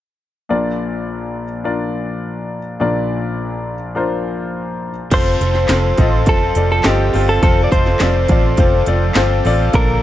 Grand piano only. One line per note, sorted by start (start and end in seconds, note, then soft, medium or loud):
0.49 2.77 A#1 medium
0.49 2.77 A#2 medium
0.49 1.44 D4 medium
0.49 1.44 F4 medium
0.49 1.44 A#4 medium
0.49 1.44 D5 medium
1.64 2.59 D4 medium
1.64 2.59 F4 medium
1.64 2.59 A#4 medium
1.64 2.59 D5 medium
2.80 5.08 A#1 medium
2.80 5.08 A#2 medium
2.80 3.74 D4 medium
2.80 3.75 F4 medium
2.80 3.75 A#4 medium
2.80 3.75 D5 medium
3.95 4.90 D4 medium
3.95 4.90 F4 medium
3.95 4.90 A#4 medium
3.95 4.91 C5 medium
5.11 5.35 C4 medium
5.11 5.35 F4 medium
5.11 5.36 A4 medium
5.11 5.36 C5 loud
5.40 5.64 C4 medium
5.40 5.65 F4 medium
5.40 5.65 A4 medium
5.40 5.65 C5 medium
5.69 5.93 C4 medium
5.69 5.93 F4 medium
5.69 5.93 A4 medium
5.69 5.94 C5 medium
5.98 6.22 C4 medium
5.98 6.22 F4 medium
5.98 6.22 A4 medium
5.98 6.23 D#5 medium
6.27 6.51 C4 medium
6.27 6.51 F4 medium
6.27 6.51 A4 medium
6.27 6.51 C5 medium
6.56 6.80 C4 medium
6.56 6.80 F4 medium
6.56 6.80 A4 medium
6.56 6.80 D5 medium
6.84 7.08 C4 medium
6.84 7.08 F4 medium
6.84 7.09 A4 medium
6.84 7.09 D#5 medium
7.14 7.37 C4 medium
7.14 7.37 F4 medium
7.14 7.38 A4 medium
7.14 7.38 C5 medium
7.42 7.66 C4 loud
7.42 7.66 F4 medium
7.42 7.66 A4 medium
7.42 7.67 C5 loud
7.71 7.95 C4 medium
7.71 7.95 F4 medium
7.71 7.95 A4 medium
7.71 7.96 D#5 medium
8.00 8.24 C4 medium
8.00 8.24 F4 medium
8.00 8.24 A4 medium
8.00 8.25 D5 medium
8.30 8.53 C4 medium
8.30 8.53 F4 medium
8.30 8.54 A4 medium
8.30 8.54 D5 medium
8.58 8.82 C4 medium
8.58 8.82 F4 medium
8.58 8.82 A4 medium
8.58 8.82 C5 medium
8.87 9.11 C4 medium
8.87 9.11 F4 medium
8.87 9.11 A4 medium
8.87 9.11 D5 medium
9.16 9.39 C4 loud
9.16 9.40 F4 medium
9.16 9.40 A4 loud
9.16 9.40 C5 loud
9.45 9.69 C4 loud
9.45 9.69 F4 medium
9.45 9.69 A4 medium
9.45 9.69 D5 loud
9.73 10.03 A#2 medium
9.73 9.97 A#3 loud
9.73 9.98 D4 medium
9.73 9.98 F4 medium
9.73 9.98 A4 loud